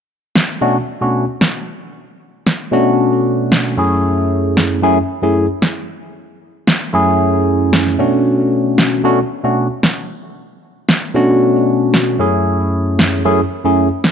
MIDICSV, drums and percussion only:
0, 0, Header, 1, 2, 480
1, 0, Start_track
1, 0, Tempo, 526316
1, 1766, Time_signature, 4, 2, 24, 8
1, 12876, End_track
2, 0, Start_track
2, 0, Title_t, "Drums"
2, 324, Note_on_c, 9, 38, 108
2, 415, Note_off_c, 9, 38, 0
2, 1287, Note_on_c, 9, 38, 107
2, 1379, Note_off_c, 9, 38, 0
2, 2248, Note_on_c, 9, 38, 109
2, 2340, Note_off_c, 9, 38, 0
2, 3208, Note_on_c, 9, 38, 107
2, 3299, Note_off_c, 9, 38, 0
2, 4168, Note_on_c, 9, 38, 106
2, 4259, Note_off_c, 9, 38, 0
2, 5127, Note_on_c, 9, 38, 106
2, 5218, Note_off_c, 9, 38, 0
2, 6087, Note_on_c, 9, 38, 107
2, 6179, Note_off_c, 9, 38, 0
2, 7049, Note_on_c, 9, 38, 108
2, 7140, Note_off_c, 9, 38, 0
2, 7173, Note_on_c, 9, 38, 31
2, 7264, Note_off_c, 9, 38, 0
2, 8008, Note_on_c, 9, 38, 102
2, 8100, Note_off_c, 9, 38, 0
2, 8967, Note_on_c, 9, 38, 97
2, 9058, Note_off_c, 9, 38, 0
2, 9929, Note_on_c, 9, 38, 100
2, 10020, Note_off_c, 9, 38, 0
2, 10887, Note_on_c, 9, 38, 100
2, 10978, Note_off_c, 9, 38, 0
2, 11848, Note_on_c, 9, 38, 108
2, 11939, Note_off_c, 9, 38, 0
2, 12805, Note_on_c, 9, 38, 106
2, 12876, Note_off_c, 9, 38, 0
2, 12876, End_track
0, 0, End_of_file